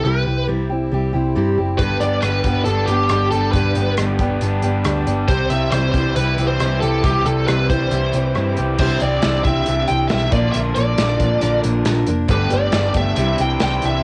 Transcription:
Already playing: G3 C4 E4 G4
0.05 C2 C3 G3 C4 E4 G4 B4
0.26 C2 C4 E4 G4
0.47 C2 C3 G3 C4 E4 G4
0.70 C4 E4 G4
0.92 C2 G3 C4 E4 G4
1.13 C2 C4 E4 G4
1.35 G2 C3 G3 C4 E4 G4
1.57 F#1 C4 E4 G4
1.78 G1 G2 D3 G3 B3 D4 G4 B4, kick, closed hi-hat
2.00 G1 G3 B3 D4 G4 D5, closed hi-hat
2.20 G1 G2 D3 G3 B4, cross-stick, closed hi-hat
2.25 B3 D4 G4
2.44 G1 D4 G4, kick, closed hi-hat
2.48 G3 B3
2.65 G1 G3 B3 D4 A4, closed hi-hat
2.69 G4
2.86 G1 D4 G4, closed hi-hat
2.91 G3 B3
3.09 G1 G2 D3 G3 B3 D4 G4, cross-stick, closed hi-hat
3.31 G1 G4 A4, closed hi-hat
3.35 G3 B3 D4
3.52 G1 G2 D3 G3 B3 D4 B4, kick, closed hi-hat
3.56 G4
3.75 G1 G3 B3 D4 G4, closed hi-hat
3.97 G1 G2 D3 G3 B3 D4 G4, cross-stick, closed hi-hat
4.19 G3 B3 D4 G4, kick, closed hi-hat
4.41 G1 G3 B3 D4 G4, closed hi-hat
4.62 G1 G3 B3 D4 G4, closed hi-hat
4.85 D2 G2 D3 G3 B3 D4 G4, cross-stick, closed hi-hat
5.06 G1 G3 B3 D4 G4, closed hi-hat
5.28 C2 C3 G3 C4 E4 G4 C5, kick, closed hi-hat
5.50 C2 G3 C4 E4 G4 E5, closed hi-hat
5.71 C2 C3 E3 G3 C4 C5, cross-stick, closed hi-hat
5.75 E4 G4
5.92 C2 G3 G4 C5, kick, closed hi-hat
5.96 C4 E4
6.16 C2 G3 C4 E4 G4 B4, closed hi-hat
6.38 C2 E3 C4 E4 G4, closed hi-hat
6.47 C5
6.60 C2 C3 G3 C4 E4 G4, cross-stick, closed hi-hat
6.80 C2 C4 E4 G4 A4, closed hi-hat
7.03 C2 C3 G3 C4 E4 G4, kick, closed hi-hat
7.25 C2 G3 C4 E4 G4 A4, closed hi-hat
7.47 C2 C3 E3 G3 C4 E4 G4 B4, cross-stick, closed hi-hat
7.70 G3 C4 E4 G4 C5, kick, closed hi-hat
7.91 C2 G3 C4 E4 G4, closed hi-hat
8.13 C2 E3 C4 E4 G4, closed hi-hat
8.35 G2 C3 G3 C4 E4 G4, cross-stick, closed hi-hat
8.57 C2 C4 E4 G4, closed hi-hat
8.78 C2 C3 E3 G3 C4 D4 E4 G4 C5, kick, crash
9.00 C2 G4 D5, closed hi-hat
9.05 D4
9.22 C2 G3 D4 E4 G4 D5, snare, closed hi-hat
9.44 C2 E4 G4 E5, kick, closed hi-hat
9.48 D4
9.66 C2 C3 G3 D4 E4 G4, closed hi-hat
9.88 C2 D4 E4 G4 G5, closed hi-hat
10.08 G3 E5, snare, closed hi-hat
10.12 B1 D4 E4 G4
10.31 A#1 A#2 D3 F3 A#3 D4 A#4 D5, kick, closed hi-hat
10.35 F4
10.52 A#1 A#2 D3 F3 A#3 D4 E5, closed hi-hat
10.56 A#4
10.75 A#1 F3 A#3 D4 A#4 D5, closed hi-hat
10.98 A#1 F3 A#3 D4 A#4, snare, closed hi-hat
11.20 A#2 F3 A#3 D4 A#4, kick, closed hi-hat
11.41 A#1 A#2 D3 F3 A#3 D4 A#4, closed hi-hat
11.63 A#1 F3 A#3 D4 A#4, closed hi-hat
11.85 A#1 F3 A#3 D4 A#4, snare, closed hi-hat
12.07 F1 F3 A#3 D4 A#4, closed hi-hat
12.28 G1 G2 D3 G3 A3 B3 D4 G4 B4, kick, closed hi-hat
12.50 G1 A3 B3 D4 G4 D5, closed hi-hat
12.72 G1 A3 B3 D4 D5, snare, closed hi-hat
12.76 G4
12.94 G1 A3 B3 D4 G4 E5, kick, closed hi-hat
13.16 C2 C3 E3 G3 C4 D4 E4 G4, closed hi-hat
13.38 C2 D4 E4 G4 G5, closed hi-hat
13.60 C2 G3 D4 E4 G4 G5, snare, closed hi-hat
13.82 C2 E4 G4 E5, closed hi-hat
13.87 D4

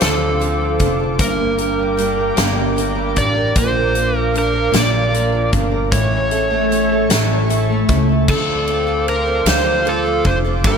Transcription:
Already playing: F3 C4 D4 A4 C5 F5 D6
0.00 D2 D3 F3 C4 F4 A4, snare, closed hi-hat
0.23 C4
0.39 F3 C4 F4 A4, closed hi-hat
0.61 F3
0.79 F1 C4 D4 F4 A4, kick, closed hi-hat
1.00 A4
1.19 G1 G2 D3 G3 A#3 D4 A#4 G5, kick, closed hi-hat
1.39 A#3
1.58 G3 A#3 D4 A#4, closed hi-hat
1.79 G3
1.97 G3 A#3 D4 A#4, closed hi-hat
2.17 A#4
2.36 G1 G2 D3 G3 A#3 D4 A#4, snare, closed hi-hat
2.57 A#3
2.76 G3 A#3 D4 A#4, closed hi-hat
2.95 G3
3.15 A1 G3 A#3 D4 A#4 D5, kick, closed hi-hat
3.35 A#4
3.55 A#1 A#2 D3 F3 A#3 D4 A#4 C5 F5, kick, closed hi-hat
3.75 A#3
3.95 F3 A#3 D4 A#4, closed hi-hat
4.14 F3 A#4
4.34 F3 A#3 D4 A#4, closed hi-hat
4.38 A#4
4.53 A#4
4.72 A#1 A#2 D3 F3 A#3 D4 A#4, snare, closed hi-hat
4.76 A#2 D5
4.92 A#3
5.12 F3 A#3 D4 A#4, closed hi-hat
5.32 F3
5.51 G1 F3 A#3 D4 A#4, kick, closed hi-hat
5.72 A#4
5.91 A1 A2 E3 A3 C#4 E4 A4 C#5 E5 C#6, kick, closed hi-hat
6.10 C#4
6.31 A3 C#4 E4 A4, closed hi-hat
6.50 A3
6.70 A3 C#4 E4 A4, closed hi-hat
6.92 A4
7.10 A1 A2 E3 A3 C#4 E4 A4, snare, closed hi-hat
7.32 C#4
7.49 A3 C#4 E4 A4, closed hi-hat
7.69 A3
7.88 C#2 A3 C#4 E4 A4, kick, closed hi-hat
8.09 A4
8.28 D2 D3 F3 C4 F4 A4 C5 F5 D6, kick, crash
8.67 F3 C4 F4 A4, ride
8.87 C4 F4 A4
9.07 D4 A#4, ride
9.26 C4 F4 A4
9.46 D2 D3 F3 C4 F4 A4 C5, snare, ride
9.85 F3 C4 F4 A4, ride
10.05 C4 F4 A4
10.24 F1 D4 C5, kick, ride
10.44 C4 F4 A4
10.64 G1 G2 D3 G3 A#3 D4 A#4 G5, kick, ride

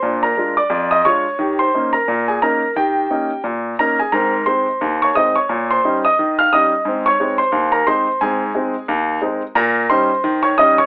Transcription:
Already playing: C5 C6
0.03 A#2 D4
0.23 A#4 A#5
0.37 G#3 D4 F4
0.57 D5 D6
0.70 F2
0.91 D#5 D#6
1.05 G#3 D4 F4 C#5 C#6
1.39 D#3 G4
1.59 C5 C6
1.74 A#3 C#4 D#4
1.93 A#4 A#5
2.08 A#2
2.28 G#4 G#5
2.42 A#3 C#4 D#4 A#4 A#5
2.76 D#3 G4 G5
3.10 A#3 C#4 D#4
3.44 A#2
3.79 A#3 C#4 D#4 A#4 A#5
3.99 G#4 G#5
4.12 G#2 C4 A#4 A#5
4.46 G#3 C4 D#4 C5 C6
4.81 D#2
5.02 C#5 C#6
5.15 G#3 C4 D#4 D#5 D#6
5.36 C#5 C#6
5.49 A#2
5.71 C5 C6
5.84 G3 C#4 D#4
6.05 D#5 D#6
6.19 D#3
6.39 F5 F6
6.53 G3 C#4 D#4 D#5 D#6
6.85 G#2 C4
7.06 C#5 C#6
7.20 G#3 C4 D#4
7.38 C5 C6
7.52 D#2
7.72 A#4 A#5
7.87 G#3 C4 D#4 C5 C6
8.21 G#2 C4 G#4 G#5
8.55 G#3 C4 D#4
8.88 D#2
9.22 G#3 C4 D#4
9.55 A#2 A#4 A#5
9.89 G3 C#4 D#4 C5 C6
10.24 D#3
10.43 C#5 C#6
10.58 G3 C#4 D#4 D#5 D#6
10.78 C#5 C#6

